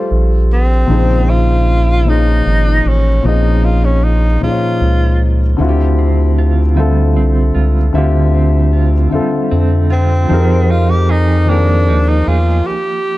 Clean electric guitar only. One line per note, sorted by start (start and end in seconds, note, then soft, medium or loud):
5.59 7.94 D3 medium
5.99 7.16 C4 soft
6.38 7.54 F4 medium
6.77 9.12 G3 medium
7.17 8.34 C4 medium
7.55 8.73 F4 medium
7.95 10.30 D3 medium
8.35 9.51 C4 soft
8.73 9.90 F4 medium
9.12 10.29 G3 medium
9.51 11.49 C4 medium
9.90 10.70 F4 medium
10.29 13.18 F3 medium
10.70 11.87 D#4 medium
11.09 12.26 G#4 medium
11.49 13.18 A#3 medium
11.89 12.74 D#4 medium
12.27 12.74 G#4 medium